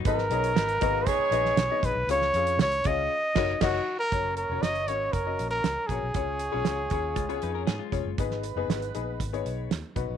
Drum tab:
CC |----------------|----------x-x---|----------------|----------------|
HH |x-xxxxx-x-x-x-x-|x-xxxxx---------|x-x-xxx-x-x-x-x-|x-x-x-x-xxx-x-x-|
SD |-o--o------oo---|-o--o-----o-o---|----o-------o---|----o-------o---|
BD |o-----o-o-----o-|------o---o-o---|o-------o-----o-|o-----o-o-----o-|

CC |----------------|
HH |x-x-xxx-xxx-x-x-|
SD |-o--o-------o---|
BD |o-------o-----o-|